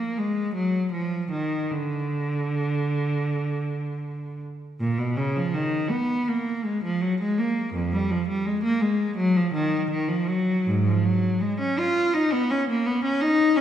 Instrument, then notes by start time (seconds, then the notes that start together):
cello
Already playing: A#3
0.18 G#3
0.54 F#3
0.92 F3
1.31 D#3
1.71 D3
4.80 A#2
4.98 B2
5.16 C#3
5.36 F3
5.54 D#3
5.90 B3
6.28 A#3
6.64 G#3
6.84 F3
7.01 F#3
7.21 G#3
7.39 A#3
7.74 F2
7.92 G3
8.10 F3
8.28 G3
8.46 G#3
8.64 A#3
8.81 G#3
9.17 F#3
9.37 F3
9.54 D#3
9.90 D#3
10.08 F3
10.27 F#3
10.67 G#2
10.87 F3
11.05 F#3
11.41 G#3
11.60 C#4
11.79 F4
12.14 D#4
12.32 B3
12.51 C#4
12.70 A#3
12.86 B3
13.04 C#4
13.21 D#4
13.56 C#4